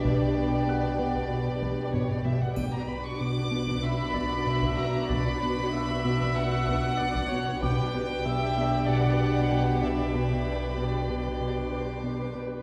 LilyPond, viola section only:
\new Staff \with { instrumentName = "Viola section" } { \time 4/4 \key g \lydian \tempo 4 = 95 b'2.~ b'8 r8 | r2 e''8 d''8 e''4 | d''8 b'8 e''2 d''8 cis''8 | b'4 e''4 d''4 b'8 d''8 |
b'2.~ b'8 b'8 | }